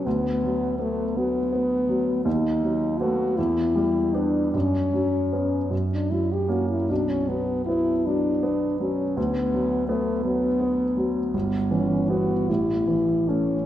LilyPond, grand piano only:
\new Staff \with { instrumentName = "Grand piano" } { \clef bass \time 6/8 \key b \minor \tempo 4. = 53 d,8 fis8 b8 fis8 b8 fis8 | dis,8 fis8 <a b>8 e,8 g8 <b d'>8 | fis,8 fis8 <b cis'>8 fis,8 fis8 <ais cis'>8 | b,,8 fis8 b8 fis8 b8 fis8 |
d,8 fis8 b8 fis8 b8 fis8 | \key a \mixolydian g,,8 e8 b8 a,,8 e8 <a cis'>8 | }